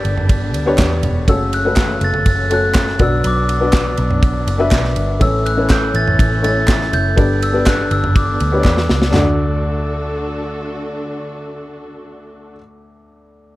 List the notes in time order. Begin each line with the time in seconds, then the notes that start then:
Already playing: G2 D3 G3 B3 D4 G4 B4 D5 G6
0.05 G1, ride
0.18 floor tom
0.29 kick, ride
0.54 D2, ride
0.66 B3 D4 G4 B4 C#5
0.78 E2, kick, snare, clap, ride
1.03 E1, floor tom, ride
1.28 F#1 C#3 F#3 A3 C#4 F#4 A4 C#5 E6, kick, ride
1.53 F#6, ride
1.65 A3 C#4 F#4 A4 B4
1.76 kick, snare, clap, ride
2.01 F#1 A6, ride
2.14 floor tom
2.26 F#1 A6, kick, ride
2.50 A3 C#4 F#4 A4 C#5 F#6, ride
2.74 kick, snare, clap, ride
2.87 snare
2.99 B1 B2 F#3 B3 D4 F#4 B4 D5 E6, kick, floor tom, ride
3.24 B1 D6, ride
3.49 ride
3.60 B3 D4 F#4 B4 D5
3.73 kick, snare, clap, ride
3.97 B1, ride
4.11 floor tom
4.23 kick, ride
4.47 F#1, ride
4.58 B3 D4 F#4 B4 E5
4.71 B1, kick, snare, clap, ride
4.84 snare
4.96 G1, ride
5.20 A1 A2 E3 A3 C#4 E4 A4 C#5 E6, kick, ride
5.46 F#6, ride
5.57 A3 C#4 E4 A4 B4
5.70 G6, kick, snare, clap, ride
5.94 A1 A6, ride
6.08 floor tom
6.19 A1, kick, ride
6.42 A3 C#4 E4 A4 C#5 A6, ride
6.68 kick, snare, clap, ride
6.81 snare
6.93 F#1 G6, ride
7.16 G1 G2 D3 G3 B3 D4 G4 B4 D5, kick, ride
7.42 E6, ride
7.53 B3 D4 G4 B4 D5
7.66 F#6, kick, snare, clap, ride
7.91 G1 E6, ride
8.04 floor tom
8.16 D6, kick, ride
8.40 D2, ride
8.52 B3 D4 G4 B4 C#5
8.60 D5
8.64 E2, kick, snare, clap
8.77 snare
8.89 C#2, snare
9.02 snare
9.11 D2 D4 F#4, snare, clap, floor tom
9.15 D3 D4 F#4 A4 D5